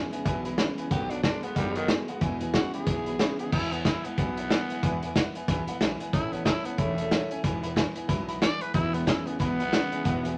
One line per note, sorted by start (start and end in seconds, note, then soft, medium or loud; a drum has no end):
0.00 0.10 E2 medium
0.00 0.10 C#3 medium
0.00 0.12 E3 medium
0.00 0.12 G#3 medium
0.00 0.12 B3 medium
0.00 0.11 E4 medium
0.12 0.24 E2 medium
0.12 0.24 C#3 medium
0.12 0.25 E3 medium
0.12 0.25 G#3 medium
0.12 0.25 B3 medium
0.12 0.26 E4 medium
0.12 0.20 B4 medium
0.12 0.20 E5 medium
0.12 0.20 G#5 loud
0.12 muted upright bass stroke medium
0.12 closed hi-hat medium
0.25 0.62 B1 medium
0.25 0.45 E2 medium
0.25 0.43 E2 medium
0.25 0.45 B2 loud
0.25 0.43 B2 loud
0.25 0.45 E3 medium
0.25 0.45 G#3 medium
0.25 0.44 B3 loud
0.25 0.44 E4 loud
0.25 0.37 B4 loud
0.25 0.37 E5 loud
0.25 0.37 G#5 loud
0.25 kick loud
0.25 closed hi-hat medium
0.44 0.57 E2 medium
0.44 0.57 B2 medium
0.44 0.56 E3 medium
0.44 0.58 G#3 medium
0.44 0.58 B3 medium
0.44 0.58 E4 medium
0.44 0.52 B4 medium
0.44 0.53 E5 medium
0.44 0.53 B5 medium
0.44 closed hi-hat medium
0.58 0.76 E2 medium
0.58 0.76 C#3 medium
0.58 0.77 E3 medium
0.58 0.76 E4 medium
0.58 0.70 B4 medium
0.58 0.70 E5 medium
0.58 0.70 B5 medium
0.58 snare loud
0.58 closed hi-hat medium
0.77 0.90 E2 medium
0.77 0.90 C#3 medium
0.77 0.91 E3 soft
0.77 0.91 G#3 medium
0.77 0.91 B3 medium
0.77 0.91 E4 medium
0.77 0.85 B4 medium
0.77 0.86 E5 medium
0.77 0.86 G#5 medium
0.77 muted upright bass stroke medium
0.77 closed hi-hat medium
0.90 1.27 B1 medium
0.90 1.10 B2 medium
0.90 1.09 B2 loud
0.90 1.11 D#3 medium
0.90 1.09 F#3 loud
0.90 1.11 A3 medium
0.90 1.10 B3 medium
0.90 1.09 F#4 medium
0.90 1.12 G4 loud
0.90 1.02 B4 medium
0.90 1.03 D#5 medium
0.90 1.03 F#5 medium
0.90 kick loud
0.90 closed hi-hat medium
1.10 1.22 B2 medium
1.10 1.22 F#3 medium
1.10 1.23 A3 soft
1.10 1.24 B3 soft
1.10 1.23 D4 medium
1.10 1.24 F#4 medium
1.10 1.18 B4 medium
1.10 1.18 D#5 medium
1.10 1.19 F#5 medium
1.10 closed hi-hat medium
1.23 1.41 B2 medium
1.23 1.43 D#3 medium
1.23 1.41 G#3 medium
1.23 1.43 A3 medium
1.23 1.43 B3 medium
1.23 1.45 D4 loud
1.23 1.42 F#4 medium
1.23 1.35 B4 medium
1.23 1.35 D#5 medium
1.23 1.35 A5 medium
1.23 kick medium
1.23 snare loud
1.23 closed hi-hat medium
1.42 1.55 B2 medium
1.42 1.55 G#3 medium
1.42 1.56 A3 soft
1.42 1.56 B3 medium
1.42 1.56 B3 soft
1.42 1.56 F#4 medium
1.42 1.50 B4 medium
1.42 1.51 D#5 medium
1.42 1.51 F#5 medium
1.42 muted upright bass stroke medium
1.42 closed hi-hat medium
1.55 1.93 F#1 loud
1.55 1.74 B2 medium
1.55 1.76 B2 medium
1.55 1.76 D#3 medium
1.55 1.74 F#3 medium
1.55 1.78 G3 loud
1.55 1.76 A3 medium
1.55 1.76 B3 medium
1.55 1.75 F#4 medium
1.55 1.67 B4 medium
1.55 1.68 D#5 medium
1.55 1.68 F#5 loud
1.55 kick loud
1.55 closed hi-hat medium
1.75 1.88 B2 medium
1.75 1.89 D#3 loud
1.75 1.88 F#3 medium
1.75 1.89 A3 soft
1.75 1.89 B3 medium
1.75 1.89 F#4 medium
1.75 1.83 B4 medium
1.75 1.84 D#5 medium
1.75 1.84 F#5 medium
1.75 closed hi-hat medium
1.88 2.06 B2 medium
1.88 2.09 D#3 medium
1.88 2.07 G#3 loud
1.88 2.09 A3 medium
1.88 2.08 B3 medium
1.88 2.07 F#4 medium
1.88 2.00 B4 medium
1.88 2.00 D#5 medium
1.88 2.01 G#5 medium
1.88 snare loud
1.88 closed hi-hat medium
2.08 2.20 B2 medium
2.08 2.21 G#3 medium
2.08 2.22 A3 soft
2.08 2.22 B3 medium
2.08 2.21 F#4 medium
2.08 2.16 B4 medium
2.08 2.16 D#5 medium
2.08 2.17 F#5 loud
2.08 muted upright bass stroke medium
2.08 closed hi-hat medium
2.21 2.39 E2 medium
2.21 2.58 E2 medium
2.21 2.41 E2 loud
2.21 2.41 B2 loud
2.21 2.39 B2 loud
2.21 2.41 E3 loud
2.21 2.41 G#3 loud
2.21 2.40 B3 medium
2.21 2.39 E4 loud
2.21 2.33 B4 loud
2.21 2.33 E5 loud
2.21 2.33 G#5 loud
2.21 kick loud
2.21 closed hi-hat medium
2.40 2.53 E2 medium
2.40 2.53 B2 medium
2.40 2.52 E3 medium
2.40 2.53 G#3 medium
2.40 2.54 B3 medium
2.40 2.54 E4 medium
2.40 2.48 B4 medium
2.40 2.49 E5 medium
2.40 2.49 G#5 loud
2.40 closed hi-hat medium
2.54 2.72 E2 medium
2.54 2.72 C#3 medium
2.54 2.73 E3 medium
2.54 2.74 G#3 medium
2.54 2.73 B3 medium
2.54 2.72 E4 medium
2.54 2.73 F#4 loud
2.54 2.66 B4 medium
2.54 2.66 E5 medium
2.54 kick medium
2.54 snare loud
2.54 closed hi-hat medium
2.73 2.86 E2 medium
2.73 2.86 C#3 medium
2.73 2.87 E3 soft
2.73 2.87 G#3 soft
2.73 2.87 B3 medium
2.73 2.87 E4 medium
2.73 3.37 G#4 loud
2.73 2.81 B4 medium
2.73 2.82 E5 medium
2.73 2.82 B5 medium
2.73 muted upright bass stroke medium
2.73 closed hi-hat medium
2.86 3.23 B1 medium
2.86 3.06 E2 medium
2.86 3.05 E2 medium
2.86 3.07 B2 medium
2.86 3.05 B2 medium
2.86 3.07 E3 medium
2.86 3.07 G#3 medium
2.86 3.06 B3 medium
2.86 3.05 E4 medium
2.86 2.98 B4 medium
2.86 2.99 E5 medium
2.86 2.99 G#5 medium
2.86 kick loud
2.86 closed hi-hat loud
3.06 3.18 E2 medium
3.06 3.19 B2 medium
3.06 3.18 E3 soft
3.06 3.19 G#3 soft
3.06 3.20 B3 medium
3.06 3.19 E4 medium
3.06 3.14 B4 medium
3.06 3.14 E5 medium
3.06 3.15 B5 medium
3.06 closed hi-hat medium
3.19 3.37 E2 medium
3.19 3.37 C#3 loud
3.19 3.39 E3 medium
3.19 3.39 B3 medium
3.19 3.38 E4 medium
3.19 3.31 B4 medium
3.19 3.31 E5 medium
3.19 3.32 B5 medium
3.19 snare loud
3.19 closed hi-hat medium
3.39 3.51 E2 medium
3.39 3.51 C#3 medium
3.39 3.52 E3 soft
3.39 3.52 G#3 soft
3.39 3.52 B3 medium
3.39 3.52 E4 medium
3.39 3.52 G#4 medium
3.39 3.47 B4 medium
3.39 3.47 E5 medium
3.39 3.47 F#5 medium
3.39 muted upright bass stroke medium
3.39 closed hi-hat medium
3.52 3.72 E2 medium
3.52 3.89 E2 medium
3.52 3.72 B2 medium
3.52 3.72 E3 medium
3.52 3.72 G#3 medium
3.52 3.71 B3 medium
3.52 3.74 E4 loud
3.52 3.71 E4 medium
3.52 3.64 B4 medium
3.52 3.64 E5 medium
3.52 3.65 G#5 medium
3.52 kick loud
3.52 crash medium
3.72 3.84 E3 soft
3.72 3.84 G#3 soft
3.72 3.84 B3 medium
3.72 3.85 B3 medium
3.72 3.85 E4 soft
3.72 3.80 B4 medium
3.72 3.80 E5 medium
3.72 3.80 G#5 medium
3.72 closed hi-hat medium
3.85 4.04 E3 medium
3.85 4.05 G#3 medium
3.85 4.04 B3 medium
3.85 4.07 E4 medium
3.85 4.03 E4 medium
3.85 3.97 B4 medium
3.85 3.97 E5 medium
3.85 3.97 B5 medium
3.85 kick medium
3.85 snare loud
3.85 closed hi-hat medium
4.04 4.17 E3 soft
4.04 4.18 G#3 medium
4.04 4.18 B3 medium
4.04 4.17 B3 medium
4.04 4.17 E4 medium
4.04 4.12 B4 medium
4.04 4.13 E5 medium
4.04 4.13 F#5 medium
4.04 muted upright bass stroke medium
4.04 closed hi-hat medium
4.18 4.54 B1 medium
4.18 4.37 E2 medium
4.18 4.37 B2 medium
4.18 4.37 E3 medium
4.18 4.38 G#3 medium
4.18 5.13 B3 loud
4.18 4.37 B3 medium
4.18 4.36 E4 medium
4.18 4.29 B4 loud
4.18 4.30 E5 medium
4.18 4.30 G#5 loud
4.18 kick loud
4.18 closed hi-hat medium
4.37 4.49 E3 soft
4.37 4.50 G#3 soft
4.37 4.50 B3 medium
4.37 4.50 E4 medium
4.37 4.45 B4 medium
4.37 4.46 E5 medium
4.37 4.46 B5 medium
4.37 closed hi-hat medium
4.50 4.70 E3 medium
4.50 4.70 G#3 medium
4.50 4.70 B3 medium
4.50 4.69 E4 medium
4.50 4.62 B4 medium
4.50 4.63 G#5 medium
4.50 snare loud
4.50 closed hi-hat medium
4.70 4.82 E3 medium
4.70 4.83 G#3 medium
4.70 4.83 B3 medium
4.70 4.83 E4 medium
4.70 4.78 B4 loud
4.70 4.78 E5 medium
4.70 4.78 G#5 medium
4.70 muted upright bass stroke medium
4.70 closed hi-hat medium
4.83 5.02 E2 medium
4.83 5.19 E2 loud
4.83 5.02 B2 loud
4.83 5.03 E3 loud
4.83 5.03 G#3 loud
4.83 5.02 B3 medium
4.83 5.01 E4 loud
4.83 4.94 B4 loud
4.83 4.95 E5 loud
4.83 4.95 G#5 loud
4.83 kick loud
4.83 closed hi-hat medium
5.02 5.15 E3 soft
5.02 5.15 G#3 medium
5.02 5.16 B3 medium
5.02 5.16 E4 medium
5.02 5.10 B4 medium
5.02 5.11 E5 medium
5.02 5.11 G#5 loud
5.02 closed hi-hat medium
5.16 5.35 E3 medium
5.16 5.35 G#3 medium
5.16 5.35 B3 medium
5.16 5.34 E4 medium
5.16 5.27 B4 medium
5.16 5.27 E5 medium
5.16 5.28 F#5 loud
5.16 kick medium
5.16 snare loud
5.16 closed hi-hat medium
5.35 5.48 E3 medium
5.35 5.48 G#3 medium
5.35 5.48 B3 medium
5.35 5.48 E4 medium
5.35 5.43 B4 medium
5.35 5.43 E5 medium
5.35 5.43 G#5 medium
5.35 muted upright bass stroke medium
5.35 closed hi-hat medium
5.48 5.65 C#2 medium
5.48 5.68 E2 medium
5.48 5.68 B2 medium
5.48 5.68 E3 loud
5.48 5.68 G#3 medium
5.48 5.67 B3 medium
5.48 5.66 E4 loud
5.48 5.60 B4 loud
5.48 5.60 E5 loud
5.48 5.60 G#5 loud
5.48 kick loud
5.48 snare soft
5.48 closed hi-hat medium
5.67 5.79 E3 medium
5.67 5.80 G#3 medium
5.67 5.81 B3 medium
5.67 5.80 E4 medium
5.67 5.75 B4 medium
5.67 5.76 E5 medium
5.67 5.76 F#5 loud
5.67 muted upright bass stroke medium
5.67 closed hi-hat medium
5.81 5.97 B1 medium
5.81 6.00 E3 medium
5.81 6.00 G#3 medium
5.81 6.00 B3 medium
5.81 5.99 E4 medium
5.81 5.92 B4 loud
5.81 5.93 E5 medium
5.81 5.93 G#5 loud
5.81 snare loud
5.81 closed hi-hat medium
6.00 6.12 E3 medium
6.00 6.13 G#3 medium
6.00 6.14 B3 medium
6.00 6.13 E4 medium
6.00 6.08 B4 medium
6.00 6.08 E5 medium
6.00 6.08 G#5 loud
6.00 muted upright bass stroke medium
6.00 closed hi-hat medium
6.13 6.50 A1 medium
6.13 6.33 A2 medium
6.13 6.33 E3 medium
6.13 6.33 A3 medium
6.13 6.32 C#4 medium
6.13 6.34 E4 loud
6.13 6.31 E4 medium
6.13 6.25 C#5 medium
6.13 6.25 E5 medium
6.13 6.25 A5 medium
6.13 kick loud
6.13 closed hi-hat medium
6.32 6.45 A3 soft
6.32 6.44 B3 medium
6.32 6.45 C#4 medium
6.32 6.46 E4 medium
6.32 6.41 C#5 medium
6.32 6.41 E5 medium
6.32 6.41 A5 medium
6.32 closed hi-hat medium
6.45 6.65 E3 medium
6.45 6.65 A3 medium
6.45 6.67 E4 loud
6.45 6.57 C#5 medium
6.45 6.58 E5 medium
6.45 6.58 A5 medium
6.45 kick medium
6.45 snare loud
6.45 closed hi-hat medium
6.65 6.78 A3 soft
6.65 6.80 B3 loud
6.65 6.78 C#4 medium
6.65 6.78 E4 medium
6.65 6.73 C#5 medium
6.65 6.73 E5 medium
6.65 6.73 A5 medium
6.65 muted upright bass stroke medium
6.65 closed hi-hat medium
6.78 7.15 E1 loud
6.78 6.98 A2 medium
6.78 6.98 E3 medium
6.78 7.42 A3 loud
6.78 6.98 A3 medium
6.78 6.98 C#4 medium
6.78 6.97 E4 medium
6.78 6.90 C#5 medium
6.78 6.90 E5 medium
6.78 6.90 B5 loud
6.78 kick loud
6.78 closed hi-hat medium
6.98 7.11 A3 soft
6.98 7.12 C#4 medium
6.98 7.11 E4 medium
6.98 7.06 C#5 medium
6.98 7.06 E5 medium
6.98 7.06 A5 medium
6.98 closed hi-hat medium
7.11 7.31 E3 medium
7.11 7.31 A3 medium
7.11 7.30 C#4 medium
7.11 7.29 E4 medium
7.11 7.23 E5 medium
7.11 7.23 F#5 medium
7.11 snare loud
7.11 closed hi-hat medium
7.30 7.44 A3 soft
7.30 7.44 C#4 medium
7.30 7.44 E4 medium
7.30 7.38 C#5 medium
7.30 7.38 E5 medium
7.30 7.39 G#5 loud
7.30 muted upright bass stroke medium
7.30 closed hi-hat medium
7.43 7.80 E1 medium
7.43 7.63 E2 medium
7.43 7.63 B2 loud
7.43 7.64 E3 medium
7.43 7.63 G#3 loud
7.43 7.62 B3 loud
7.43 7.62 E4 loud
7.43 7.55 B4 loud
7.43 7.55 E5 medium
7.43 7.56 G#5 loud
7.43 kick loud
7.43 closed hi-hat loud
7.62 7.75 E3 soft
7.62 7.76 G#3 medium
7.62 7.76 B3 medium
7.62 7.76 E4 medium
7.62 7.71 B4 medium
7.62 7.71 E5 medium
7.62 7.71 B5 loud
7.62 closed hi-hat medium
7.76 7.96 E3 medium
7.76 7.96 G#3 medium
7.76 7.95 B3 medium
7.76 7.94 E4 medium
7.76 7.88 B4 medium
7.76 7.88 E5 medium
7.76 7.88 G#5 loud
7.76 kick medium
7.76 snare loud
7.76 closed hi-hat medium
7.95 8.08 E3 soft
7.95 8.09 G#3 medium
7.95 8.09 B3 medium
7.95 8.09 E4 medium
7.95 8.04 B4 medium
7.95 8.04 E5 medium
7.95 8.04 G#5 loud
7.95 muted upright bass stroke medium
7.95 closed hi-hat medium
8.08 8.46 B1 medium
8.08 8.28 E2 medium
8.08 8.29 B2 medium
8.08 8.29 E3 medium
8.08 8.29 G#3 loud
8.08 8.28 B3 medium
8.08 8.27 E4 loud
8.08 8.20 B4 loud
8.08 8.20 E5 loud
8.08 8.21 B5 loud
8.08 kick loud
8.08 closed hi-hat medium
8.28 8.40 E3 soft
8.28 8.41 G#3 medium
8.28 8.42 B3 medium
8.28 8.42 E4 medium
8.28 8.36 B4 medium
8.28 8.36 E5 medium
8.28 8.37 B5 loud
8.28 closed hi-hat medium
8.40 8.61 E3 medium
8.40 8.61 G#3 medium
8.40 8.53 B4 medium
8.40 8.63 D5 loud
8.40 8.53 G#5 medium
8.40 snare loud
8.40 closed hi-hat medium
8.60 8.73 E3 soft
8.60 8.74 G#3 soft
8.60 8.74 B3 medium
8.60 8.74 E4 soft
8.60 8.69 B4 medium
8.60 8.74 B4 loud
8.60 8.69 E5 medium
8.60 8.69 G#5 medium
8.60 muted upright bass stroke medium
8.60 closed hi-hat medium
8.73 9.11 E1 loud
8.73 8.94 E2 medium
8.73 8.92 E2 medium
8.73 8.94 B2 medium
8.73 8.92 B2 loud
8.73 8.94 E3 medium
8.73 8.94 G#3 medium
8.73 8.93 B3 medium
8.73 8.95 E4 loud
8.73 8.92 E4 medium
8.73 8.86 B4 medium
8.73 8.86 E5 medium
8.73 8.86 B5 loud
8.73 kick loud
8.73 closed hi-hat medium
8.93 9.05 E2 medium
8.93 9.06 B2 loud
8.93 9.05 E3 soft
8.93 9.06 G#3 soft
8.93 9.07 B3 medium
8.93 9.06 B3 soft
8.93 9.07 E4 medium
8.93 9.02 B4 medium
8.93 9.02 E5 medium
8.93 9.02 B5 medium
8.93 closed hi-hat medium
9.06 9.25 E2 medium
9.06 9.25 C#3 medium
9.06 9.26 E3 medium
9.06 9.26 G#3 medium
9.06 9.25 B3 medium
9.06 9.28 E4 medium
9.06 9.24 E4 medium
9.06 9.18 B4 medium
9.06 9.19 G#5 medium
9.06 kick medium
9.06 snare loud
9.06 closed hi-hat medium
9.25 9.39 E2 medium
9.25 9.39 C#3 medium
9.25 9.39 E3 soft
9.25 9.39 G#3 medium
9.25 9.39 B3 medium
9.25 9.39 E4 medium
9.25 9.34 B4 medium
9.25 9.34 E5 medium
9.25 9.35 G#5 medium
9.25 muted upright bass stroke medium
9.25 closed hi-hat medium
9.39 9.76 B1 medium
9.39 9.59 E2 medium
9.39 9.57 E2 medium
9.39 9.59 B2 medium
9.39 9.58 B2 medium
9.39 9.59 E3 medium
9.39 9.59 G#3 medium
9.39 10.34 B3 loud
9.39 9.58 B3 medium
9.39 9.57 E4 medium
9.39 9.51 B4 medium
9.39 9.51 E5 medium
9.39 9.52 B5 loud
9.39 kick loud
9.39 snare soft
9.39 closed hi-hat medium
9.58 9.71 E2 medium
9.58 9.72 B2 medium
9.58 9.71 E3 soft
9.58 9.72 G#3 soft
9.58 9.72 B3 medium
9.58 9.72 E4 medium
9.58 9.67 B4 medium
9.58 9.67 E5 medium
9.58 9.67 B5 medium
9.58 closed hi-hat medium
9.72 9.90 E2 medium
9.72 9.90 C#3 medium
9.72 9.92 E3 medium
9.72 9.92 G#3 medium
9.72 9.92 B3 medium
9.72 9.90 E4 medium
9.72 9.84 B4 medium
9.72 9.84 E5 medium
9.72 9.84 B5 medium
9.72 snare loud
9.72 closed hi-hat medium
9.91 10.04 E2 medium
9.91 10.04 C#3 medium
9.91 10.04 E3 soft
9.91 10.05 G#3 medium
9.91 10.05 B3 medium
9.91 10.05 E4 medium
9.91 9.99 B4 medium
9.91 10.00 E5 medium
9.91 10.00 G#5 medium
9.91 muted upright bass stroke medium
9.91 closed hi-hat medium
10.04 10.38 E1 medium
10.04 10.24 E2 medium
10.04 10.23 E2 medium
10.04 10.25 B2 loud
10.04 10.23 B2 loud
10.04 10.25 E3 loud
10.04 10.24 G#3 loud
10.04 10.24 B3 loud
10.04 10.23 E4 medium
10.04 10.16 B4 loud
10.04 10.17 E5 medium
10.04 10.17 F#5 loud
10.04 kick loud
10.04 closed hi-hat medium
10.24 10.37 E2 medium
10.24 10.37 B2 medium
10.24 10.36 E3 medium
10.24 10.37 G#3 medium
10.24 10.37 B3 medium
10.24 10.37 E4 medium
10.24 10.32 B4 medium
10.24 10.32 E5 medium
10.24 10.33 G#5 medium
10.24 closed hi-hat medium